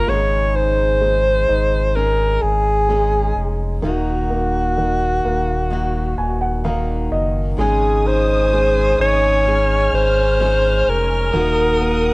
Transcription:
Already playing: A#3 F4 A#4
0.07 G#1 G#2 C#3 G#3 C#4 D#4 C#5
0.11 G#4
0.54 D#4 C5
1.01 G#3
1.49 G#1 D#4
1.95 G#3 C#4 D#4 G#4 A#4
2.42 G#1 G#4
2.89 G#3 C#4 D#4 G#4
3.36 F1
3.82 D#1 D#3 A#3 D#4 F#4
4.30 A#3
4.78 D#3
5.24 D#1 A#3
5.70 D#3 A#3 D#4 F#4
6.18 D#1 G#5
6.41 F#5
6.64 D#3 A#3 D#4 F#4 F5
7.11 F#1 D#5
7.57 G#1 G#2 C#3 G#3 C#4 D#4 G#4 G#5 D#6
7.61 G#4
8.06 D#4 C5
8.53 G#3
8.99 G#1 D#4 C#5
9.45 G#3 C#4 D#4 G#4 F6
9.92 G#1 C5
10.39 G#3 C#4 D#4 G#4
10.87 F1 A#4
11.33 D#1 D#3 A#3 D#4 F#4 A#4 F#5 D#6
11.81 A#3

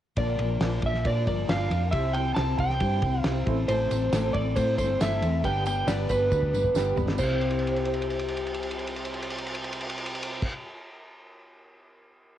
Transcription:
0.17 A#1 A#2 D3 F3 A#3 D4 F4 A#4 D5, kick, ride
0.39 A#1 F3 A#3 D4 A#4, ride
0.60 A#1 A#2 D3 F3 A#3 D4 F4 A#4 D5, snare, ride
0.82 A#1 F3 A#3 D4 A#4 E5, kick, ride
0.94 snare
1.05 A#2 F3 A#3 D4 F4 A#4 D5, kick, ride
1.26 G1 F3 A#3 D4 A#4 D5, kick, ride
1.47 G1 A#2 D3 F3 A#3 D4 F4 A#4 D5 F5, snare, ride
1.70 F2 F3 A#3 D4 A#4, ride
1.91 C2 C3 G3 C4 E4 G4 C5 E5, kick, ride
2.13 C4 E4 C5 G5, ride
2.34 C2 C3 G3 C4 E4 G4 C5 A5, snare, ride
2.58 C2 C4 E4 C5 G5, kick, ride
2.69 snare
2.80 G2 G3 C4 E4 G4 C5, kick, ride
3.02 C2 E4 C5, kick, ride
3.06 C4
3.20 F5
3.24 C2 C3 G3 C4 E4 G4 C5, snare, ride
3.46 A1 A3 C4 E4 A4 C5, kick, ride
3.68 A1 A2 E3 A3 C4 E4 A4 C5, ride, tambourine
3.91 A1 C4 E4 A4, ride, tambourine
3.95 A3
4.12 A1 A2 E3 A3 C4 E4 A4 C5, snare, ride, tambourine
4.33 A1 C4 E4 A4 D5, kick, ride
4.37 A3
4.56 A2 A3 C4 E4 A4 C5, kick, ride, tambourine
4.77 G1 A3 C4 E4 A4 C5, kick, ride, tambourine
5.00 G1 A2 E3 A3 C4 E4 A4 C5 E5, snare, ride, tambourine
5.22 E2 A3 C4 E4 A4, ride, tambourine
5.43 G1 G2 D3 G3 B3 D4 G4 B4 D5 G5, kick, ride, tambourine
5.65 G3 B3 D4 B4 G5, ride, tambourine
5.87 G1 G2 D3 G3 B3 D4 G4 B4 D5, snare, ride, tambourine
6.09 G1 G3 B3 D4 B4, kick, ride, tambourine
6.30 D2 G3 B3 D4 G4 B4, kick, tambourine
6.43 kick
6.53 G1 G3 B3 D4 B4, tambourine
6.65 kick
6.74 G1 G2 D3 G3 B3 D4 G4 B4 G5, snare, tambourine
6.96 G1 G3 B3 D4 B4 B5, floor tom, tambourine
7.09 snare
7.13 C3
7.18 C2 G3 C4 E4 G4 C5 E5 G5, kick, crash, tambourine
7.23 C4 C5
7.27 E4
7.32 G4
7.41 crash
7.51 ride
7.59 crash
7.67 ride
7.76 crash
7.85 ride
7.94 crash
8.02 ride
8.10 crash
8.19 ride
8.28 crash
8.37 ride
8.46 crash
8.54 ride
8.63 crash
8.71 ride
8.79 crash
8.87 ride
8.96 crash
9.05 ride
9.14 crash
9.22 ride
9.30 crash
9.38 ride
9.47 crash
9.55 ride
9.64 crash
9.73 ride
9.81 crash
9.90 ride
9.98 crash
10.06 ride
10.15 crash
10.23 ride
10.42 kick, crash

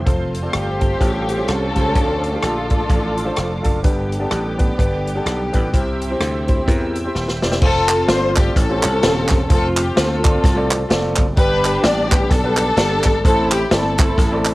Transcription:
0.05 F1 F3 A3 C4 F4 A4 C5 F5 C6, kick, closed hi-hat
0.35 closed hi-hat
0.42 C4 F4 A4 D5
0.53 G1 C4 G4, cross-stick, closed hi-hat
0.79 C4 F4 A4 C5, kick, closed hi-hat
0.99 A1 A2 C#3 G3 A3 C#4 F4 G4 A4 F5 G5 C#6, kick, cross-stick, closed hi-hat
1.29 closed hi-hat
1.37 C#4 F4 G4 C5
1.47 C2 C4 C#4 A4, cross-stick, closed hi-hat
1.75 C#2 C#4 F4 G4 C5, kick, cross-stick, closed hi-hat
1.94 D2 D3 F3 A3 D4 F4 A4 D6, kick, closed hi-hat
2.24 closed hi-hat
2.31 A3 D4 F4 G4
2.42 A#1 D4 F4 A4, cross-stick, closed hi-hat
2.69 A3 D4 F4 A4, kick, closed hi-hat
2.88 A1 A3 D4 F4 A4, kick, cross-stick, closed hi-hat
3.18 closed hi-hat
3.25 A3 D4 F4 C5
3.36 F1, cross-stick, closed hi-hat
3.62 F#1 A3 D4 F4 A4, kick, closed hi-hat
3.83 G1 G2 G3 B3 D4 G4 B4 G5, kick, closed hi-hat
4.12 closed hi-hat
4.19 B3 D4 G4 A4
4.31 A1, cross-stick, closed hi-hat
4.58 B3 D4 G4 B4, kick, closed hi-hat
4.77 G1 B3 D4 G4 B4, kick, closed hi-hat
5.07 closed hi-hat
5.15 B3 D4 G4 A4
5.26 B1, cross-stick, closed hi-hat
5.52 A1 B3 D4 G4 B4, kick, cross-stick, closed hi-hat
5.72 C2 C3 C4 E4 G4 C5 E5 G5 E6, kick, closed hi-hat
6.02 closed hi-hat
6.10 C4 E4 G4 C5
6.20 D2, cross-stick, closed hi-hat
6.47 C4 E4 G4 C5, kick, closed hi-hat
6.66 E2 C4 E4 G4 A#4, kick, cross-stick, closed hi-hat
6.95 closed hi-hat
7.04 C4 E4 G4 C5
7.15 D#1, snare
7.28 snare
7.42 E1 C4 E4 G4 D5, snare
7.52 snare
7.60 F1 A3 C4 F4 A4 C5, kick, crash
7.89 clap, closed hi-hat
8.06 G1 A3 C4 F4 A4 D5, snare, closed hi-hat
8.11 C5
8.35 A3 C4 F4 A4 D5, kick, clap, closed hi-hat
8.39 G4
8.55 A1 A2 C4 C#4, kick, snare, closed hi-hat
8.60 A4
8.69 C#4 F4 G4 A4 C5
8.83 C2, clap, closed hi-hat
9.02 D#1 C#3 F4 G4 A4 C5, snare, closed hi-hat
9.28 E1, kick, snare, clap, closed hi-hat
9.48 F1 A3 C4 F4 A4 C5, kick, closed hi-hat
9.53 F4 A4
9.77 G4, clap, closed hi-hat
9.95 D2 A3 C4 F4 A4 C5, snare, closed hi-hat
10.00 A4
10.23 A3 C4 F4 A4 D5, kick, clap, closed hi-hat
10.44 C2, kick, snare, closed hi-hat
10.55 A3 C4 F4 A4 D5
10.71 clap, closed hi-hat
10.89 F1 A3 C4 F4 A4 D5, snare, closed hi-hat
11.16 F#1, kick, clap, closed hi-hat
11.36 G1 G2 G3 B3 D4 G4 B4, kick, closed hi-hat
11.65 clap, closed hi-hat
11.83 A1 G3 B3 D4 G4 D5, snare, closed hi-hat
12.11 G3 B3 D4 G4 B4, kick, clap, closed hi-hat
12.30 B1 D4 A4, kick, snare, closed hi-hat
12.44 G3 B3 D4 G4 B4
12.57 clap, closed hi-hat
12.76 G1 G3 B3 D4 G4 A4, snare, closed hi-hat
13.04 G#1, kick, snare, clap, closed hi-hat
13.24 A1 A2 A3 C4 E4 A4 C5, kick, closed hi-hat
13.51 G4, clap, closed hi-hat
13.71 G1 A3 C4 E4 A4 D5, snare, closed hi-hat
13.98 A3 C4 E4 A4 C5, kick, clap, closed hi-hat
14.18 A1, kick, snare, closed hi-hat
14.32 A3 C4 E4 A4 D5
14.45 clap, closed hi-hat

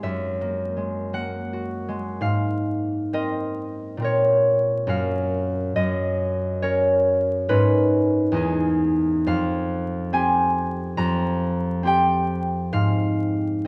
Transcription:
Already playing: G#3 F5 G#5
0.03 F#2 E5
0.41 A#3
0.77 G#3
1.13 A#3 F#5
1.53 F#4
1.88 G#3
2.21 G#2 F5
3.13 C4 A#4 D#5
3.97 A#2 C4
4.02 A#4 C#5
4.87 F#2 C#4 A#4 F5
5.76 F#2 D#5
6.62 C#4 A#4 C#5
7.49 G#2 C#4 A#4 B4
8.32 E2 D#4
8.37 G#4
9.26 F2 F5
10.13 C4 G4 G#5
10.97 F2 A#5
11.83 C4 G4
11.87 G5
12.73 G#2 F5

